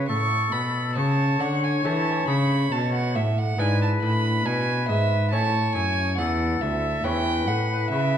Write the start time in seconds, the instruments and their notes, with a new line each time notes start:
Already playing: cello C#3
0.08 lute A2, cello A2, oboe A4, violin C#6
0.52 cello B2, lute B2, violin B5
0.95 lute C#3, cello C#3, oboe C#5, violin A5
1.39 lute D3, cello D3, violin F#5
1.64 violin G#5
1.84 lute E3 A3 C#4 A4, cello E3, violin A5
2.27 lute C#3, cello C#3, violin B5
2.72 cello B2, lute B2, violin A5
2.94 violin F#5
3.14 lute A2, cello A2, violin E5
3.39 violin F#5
3.58 lute G#2 D4 E4 B4, cello G#2, oboe B4, violin G#5
3.82 violin A5
4.02 cello A2, lute A2, violin B5
4.45 lute B2, cello B2, oboe B4, violin G#5
4.88 lute G#2, cello G#2, violin E5
5.31 lute A2 C#4 E4 C#5, cello A2, oboe C#5, violin A5
5.75 lute F#2, cello F#2, violin G#5
6.18 cello E2, lute E2, oboe A4, violin F#5
6.61 lute D2, cello D2, violin E5
7.04 lute E2 C#4 E4 C#5, cello E2, oboe B4, violin G5
7.48 cello A2, lute A2, violin F#5
7.90 cello C#3, lute C#3, violin E5